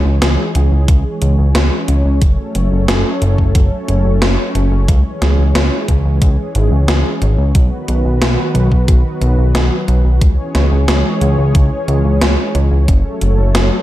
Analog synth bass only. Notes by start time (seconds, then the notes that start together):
0.05 C#2
0.22 C#2
0.55 C#2
0.72 C#2
0.89 C#2
1.22 C#2
1.39 C#2
1.55 C#2
1.88 C#2
2.05 C#2
2.22 F#1
2.55 F#1
2.72 F#1
2.88 F#1
3.22 F#1
3.38 F#1
3.55 F#1
3.88 F#1
4.05 F#1
4.22 F#1
4.55 F#1
4.72 F#1
4.88 C#2
5.22 C#2
5.39 C#2
5.55 C#2
5.89 C#2
6.05 C#2
6.22 C#2
6.55 G#1
6.72 C#2
6.88 C#2
7.22 G#1
7.38 C#2
7.55 B1
7.88 B1
8.05 B1
8.22 B1
8.55 B1
8.72 B1
8.88 B1
9.21 B1
9.38 B1
9.55 B1
9.88 B1
10.05 B1
10.22 C#2
10.55 C#2
10.72 C#2
10.88 C#2
11.21 C#2
11.38 C#2
11.55 C#2
11.88 C#2
12.05 C#2
12.22 C#2
12.55 C#2
12.72 C#2
12.88 F#1
13.22 F#1
13.38 F#1
13.55 F#1